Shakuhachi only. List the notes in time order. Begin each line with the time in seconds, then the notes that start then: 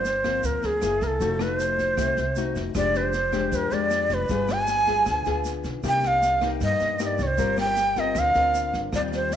Already playing: C5
0.45 A#4
0.65 G#4
1.03 A4 A#4
1.42 B4
1.57 C5
2.77 D5
2.97 C5
3.56 A#4
3.74 D5
4.14 B4
4.52 G#5
5.88 G5
6.07 F5
6.64 D#5
7.03 D5 D#5
7.23 C#5
7.27 C5
7.60 G5
7.99 D#5
8.19 F5
8.95 D5
9.15 C5